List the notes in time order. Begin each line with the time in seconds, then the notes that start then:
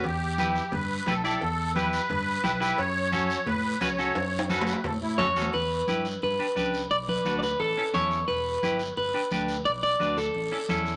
0.04 E2 G4, cowbell, long guiro
0.38 E4 G4 B4, cowbell, high conga, short guiro
0.55 short guiro
0.72 G2 B4, cowbell, low conga, long guiro
1.06 B1 E4 G4 A4 B4, cowbell, high conga, low timbale, short guiro
1.24 E4 G4 A4 D5, short guiro
1.41 E2, cowbell, long guiro
1.75 E4 G4 B4, cowbell, high conga, short guiro
1.93 short guiro
2.10 G2, cowbell, low conga, long guiro
2.44 B1 E4 G4 B4, cowbell, high conga, short guiro
2.60 E4 G4 B4, short guiro
2.78 F#2 C#5, cowbell, long guiro
3.12 C#4 F#4 A4, cowbell, high conga, short guiro
3.30 short guiro
3.46 A2 B4, cowbell, low conga, long guiro
3.80 C#2 C#4 F#4 B4 C#5, cowbell, high conga, short guiro
3.99 C#4 F#4 A4, short guiro
4.15 F#2, cowbell, high timbale, long guiro
4.39 high timbale
4.49 C#4 F#4 A4 B4, cowbell, high conga, short guiro
4.61 low timbale
4.67 short guiro
4.73 low timbale
4.84 A2 A4, cowbell, low conga, low timbale, long guiro
5.01 A2 E4
5.18 F#2 C#4 F#4 A4 C#5, cowbell, high conga, low conga, low timbale, short guiro
5.36 E2 C#4 F#4 A4, short guiro
5.42 low timbale
5.53 E2 B4, long guiro
5.87 G2 E4 G4 B4, high conga, short guiro
6.05 short guiro
6.22 G2 B4, long guiro
6.39 D4 G4 B4
6.56 C#2 D4 G4 B4, high conga, short guiro
6.74 short guiro
6.91 B1 D5, long guiro
7.08 B4, high conga
7.25 D2 D4 F#4 B4, high conga, short guiro
7.39 D5, short guiro
7.43 B4
7.60 A1 A4, long guiro
7.77 C#4 E4 A4
7.94 E2 C#4 E4 A4 C#5, high conga, short guiro
8.11 short guiro
8.28 E1 B4, long guiro
8.62 G1 E4 G4 B4, high conga, short guiro
8.79 short guiro
8.97 G1 B4, long guiro
9.14 D4 G4 B4
9.31 D2 D4 G4 B4, high conga, short guiro
9.48 short guiro
9.65 B1 D5, long guiro
9.83 D5
9.99 D2 D4 F#4 B4, high conga, short guiro
10.18 A4, short guiro
10.35 A1, long guiro
10.52 C#4 E4 A4
10.69 E2 C#4 E4 A4, high conga, short guiro
10.86 short guiro